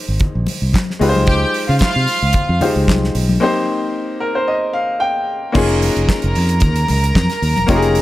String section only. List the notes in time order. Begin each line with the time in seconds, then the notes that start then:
1.27 G4 G5
1.67 F4 F5
1.80 F4 F5
5.55 A#4 A#5